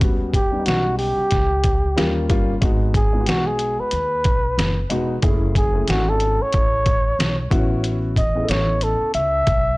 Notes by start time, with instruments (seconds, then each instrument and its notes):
0.00 upright bass D#2, grand piano G3 B3 C#4 F#4, kick, closed hi-hat
0.34 flugelhorn G4, kick, closed hi-hat
0.51 grand piano G3 B3 C#4 D4
0.59 grand piano D#4
0.66 upright bass B1, flugelhorn F#4, snare, closed hi-hat
0.98 flugelhorn G4, open hi-hat
1.18 muted upright bass stroke
1.31 upright bass C#2, kick, snare, closed hi-hat
1.64 kick, closed hi-hat
1.96 upright bass D#2, grand piano G3 A#3 C#4 F4, snare, closed hi-hat
2.29 upright bass G1, grand piano G3 A#3 C#4 F4, kick, closed hi-hat
2.61 upright bass G#1, grand piano G#3 B3 D#4 F#4, kick, closed hi-hat
2.94 flugelhorn G#4, kick, closed hi-hat
3.13 grand piano G#3 B3 D#4 F4
3.21 grand piano F#4
3.26 upright bass B1, flugelhorn F#4, snare, closed hi-hat
3.47 flugelhorn G#4
3.59 closed hi-hat
3.79 flugelhorn B4, muted upright bass stroke
3.91 upright bass D#2, closed hi-hat
4.24 upright bass B1, kick, closed hi-hat
4.58 upright bass F#1, snare, closed hi-hat
4.90 upright bass E1, grand piano G#3 B3 D#4 F#4, closed hi-hat
5.22 upright bass F#1, grand piano A3 C#4 E4 G#4, kick, closed hi-hat
5.55 flugelhorn G#4, kick, closed hi-hat
5.74 grand piano A3 C#4 E4 G#5
5.88 upright bass G#1, flugelhorn F#4, snare, closed hi-hat
6.09 flugelhorn A4
6.20 closed hi-hat
6.40 flugelhorn C#5, muted upright bass stroke
6.52 upright bass A1, kick, closed hi-hat
6.86 kick, closed hi-hat
7.19 upright bass B1, snare, closed hi-hat
7.50 upright bass A1, grand piano B3 C#4 E4 F#4, kick, closed hi-hat
7.84 closed hi-hat
8.16 flugelhorn D#5, kick, closed hi-hat
8.35 grand piano B3 C#4 E4 G#4
8.43 grand piano A4
8.49 upright bass A1, flugelhorn C#5, snare, closed hi-hat
8.81 flugelhorn A4, closed hi-hat
9.01 muted upright bass stroke
9.14 upright bass C#2, flugelhorn E5, closed hi-hat
9.47 upright bass B1, kick, closed hi-hat